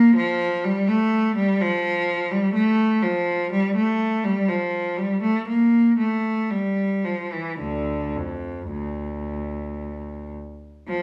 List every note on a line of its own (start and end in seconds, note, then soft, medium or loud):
0.00 0.16 A#3 medium
0.16 0.63 F3 medium
0.64 0.88 G3 medium
0.88 1.36 A3 medium
1.36 1.60 G3 medium
1.61 2.31 F3 medium
2.31 2.55 G3 medium
2.54 3.01 A3 medium
3.03 3.51 F3 medium
3.52 3.75 G3 medium
3.76 4.23 A3 medium
4.24 4.49 G3 medium
4.49 4.98 F3 medium
4.97 5.22 G3 medium
5.22 5.47 A3 medium
5.48 5.97 A#3 medium
5.98 6.49 A3 medium
6.51 7.04 G3 medium
7.04 7.32 F3 medium
7.32 7.60 E3 medium
7.59 8.12 D2 medium
7.59 8.15 D3 medium
8.16 8.72 F2 medium
8.71 10.31 D2 medium
10.88 11.02 F3 medium